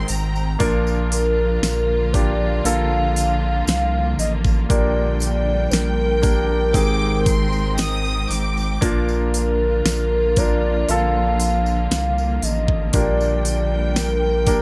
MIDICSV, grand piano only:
0, 0, Header, 1, 2, 480
1, 0, Start_track
1, 0, Key_signature, -2, "major"
1, 0, Tempo, 1027397
1, 281, Time_signature, 4, 2, 24, 8
1, 6830, End_track
2, 0, Start_track
2, 0, Title_t, "Grand piano"
2, 0, Program_c, 0, 0
2, 0, Control_c, 0, 64, 127
2, 0, Note_on_c, 0, 44, 63
2, 0, Note_on_c, 0, 51, 64
2, 0, Note_on_c, 0, 60, 71
2, 0, Note_on_c, 0, 63, 66
2, 0, Note_on_c, 0, 67, 64
2, 0, Note_on_c, 0, 68, 80
2, 232, Note_off_c, 0, 60, 0
2, 232, Note_off_c, 0, 63, 0
2, 234, Note_off_c, 0, 67, 0
2, 236, Note_off_c, 0, 68, 0
2, 276, Note_on_c, 0, 58, 88
2, 280, Note_on_c, 0, 62, 80
2, 281, Note_on_c, 0, 46, 71
2, 281, Note_on_c, 0, 53, 77
2, 281, Note_on_c, 0, 65, 83
2, 284, Note_on_c, 0, 70, 103
2, 288, Control_c, 0, 64, 0
2, 289, Note_off_c, 0, 44, 0
2, 289, Note_off_c, 0, 51, 0
2, 365, Control_c, 0, 64, 127
2, 961, Note_off_c, 0, 58, 0
2, 963, Note_off_c, 0, 62, 0
2, 964, Note_off_c, 0, 65, 0
2, 965, Note_off_c, 0, 70, 0
2, 981, Note_off_c, 0, 46, 0
2, 981, Note_off_c, 0, 53, 0
2, 997, Note_on_c, 0, 58, 71
2, 998, Note_on_c, 0, 62, 67
2, 1002, Note_on_c, 0, 65, 66
2, 1004, Note_on_c, 0, 67, 78
2, 1225, Note_off_c, 0, 58, 0
2, 1226, Note_off_c, 0, 62, 0
2, 1228, Note_off_c, 0, 65, 0
2, 1229, Note_off_c, 0, 67, 0
2, 1235, Note_on_c, 0, 58, 77
2, 1239, Note_on_c, 0, 50, 69
2, 1241, Note_on_c, 0, 65, 70
2, 1243, Note_on_c, 0, 69, 79
2, 2145, Note_off_c, 0, 58, 0
2, 2147, Note_off_c, 0, 50, 0
2, 2148, Note_off_c, 0, 65, 0
2, 2149, Note_off_c, 0, 69, 0
2, 2192, Note_on_c, 0, 58, 73
2, 2195, Note_on_c, 0, 46, 64
2, 2195, Note_on_c, 0, 62, 65
2, 2196, Note_on_c, 0, 67, 66
2, 2199, Note_on_c, 0, 70, 78
2, 2201, Control_c, 0, 64, 0
2, 2273, Control_c, 0, 64, 127
2, 2874, Note_off_c, 0, 58, 0
2, 2876, Note_off_c, 0, 62, 0
2, 2876, Note_off_c, 0, 67, 0
2, 2878, Note_off_c, 0, 70, 0
2, 2893, Note_off_c, 0, 46, 0
2, 2906, Note_on_c, 0, 58, 70
2, 2910, Note_on_c, 0, 62, 63
2, 2911, Note_on_c, 0, 67, 62
2, 2913, Note_on_c, 0, 70, 73
2, 3137, Note_off_c, 0, 58, 0
2, 3139, Note_off_c, 0, 62, 0
2, 3139, Note_off_c, 0, 67, 0
2, 3140, Note_off_c, 0, 70, 0
2, 3146, Note_on_c, 0, 60, 65
2, 3149, Note_on_c, 0, 63, 61
2, 3150, Note_on_c, 0, 51, 58
2, 3151, Note_on_c, 0, 44, 59
2, 3153, Note_on_c, 0, 67, 62
2, 3154, Note_on_c, 0, 68, 73
2, 3158, Control_c, 0, 64, 0
2, 3231, Control_c, 0, 64, 127
2, 3860, Note_off_c, 0, 51, 0
2, 3861, Note_off_c, 0, 44, 0
2, 4071, Note_off_c, 0, 60, 0
2, 4073, Note_off_c, 0, 63, 0
2, 4074, Note_off_c, 0, 67, 0
2, 4075, Note_off_c, 0, 68, 0
2, 4117, Note_on_c, 0, 58, 86
2, 4119, Note_on_c, 0, 62, 77
2, 4120, Note_on_c, 0, 65, 73
2, 4121, Note_on_c, 0, 46, 68
2, 4122, Note_on_c, 0, 53, 68
2, 4125, Note_on_c, 0, 70, 92
2, 4128, Control_c, 0, 64, 0
2, 4213, Control_c, 0, 64, 127
2, 4808, Note_off_c, 0, 58, 0
2, 4809, Note_off_c, 0, 62, 0
2, 4809, Note_off_c, 0, 65, 0
2, 4812, Note_off_c, 0, 70, 0
2, 4827, Note_off_c, 0, 46, 0
2, 4828, Note_off_c, 0, 53, 0
2, 4845, Note_on_c, 0, 58, 66
2, 4851, Note_on_c, 0, 62, 61
2, 4854, Note_on_c, 0, 65, 60
2, 4856, Note_on_c, 0, 70, 73
2, 5075, Note_off_c, 0, 58, 0
2, 5078, Note_off_c, 0, 62, 0
2, 5080, Note_off_c, 0, 65, 0
2, 5081, Note_off_c, 0, 70, 0
2, 5087, Note_on_c, 0, 58, 70
2, 5089, Note_on_c, 0, 50, 66
2, 5092, Note_on_c, 0, 65, 59
2, 5096, Note_on_c, 0, 69, 82
2, 5999, Note_off_c, 0, 58, 0
2, 6000, Note_off_c, 0, 50, 0
2, 6002, Note_off_c, 0, 65, 0
2, 6003, Note_off_c, 0, 69, 0
2, 6042, Note_on_c, 0, 58, 72
2, 6045, Note_on_c, 0, 62, 64
2, 6046, Note_on_c, 0, 46, 62
2, 6048, Note_on_c, 0, 67, 68
2, 6051, Note_on_c, 0, 70, 79
2, 6054, Control_c, 0, 64, 0
2, 6141, Control_c, 0, 64, 127
2, 6723, Note_off_c, 0, 58, 0
2, 6725, Note_off_c, 0, 62, 0
2, 6726, Note_off_c, 0, 67, 0
2, 6728, Note_off_c, 0, 70, 0
2, 6742, Note_off_c, 0, 46, 0
2, 6759, Note_on_c, 0, 58, 72
2, 6762, Note_on_c, 0, 62, 62
2, 6764, Note_on_c, 0, 67, 61
2, 6767, Note_on_c, 0, 70, 81
2, 6830, Note_off_c, 0, 58, 0
2, 6830, Note_off_c, 0, 62, 0
2, 6830, Note_off_c, 0, 67, 0
2, 6830, Note_off_c, 0, 70, 0
2, 6830, End_track
0, 0, End_of_file